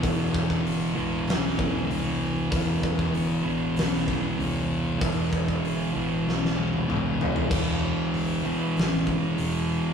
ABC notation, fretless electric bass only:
X:1
M:4/4
L:1/8
Q:1/4=96
K:Clyd
V:1 name="Fretless electric bass" clef=bass
E,,,2 G,,, A,,, B,,,2 C,,2 | E,,,2 G,,, A,,, B,,,2 C,,2 | E,,,2 G,,, A,,, B,,,2 C,,2 | E,,,2 G,,,2 A,,,2 E,,,2 |]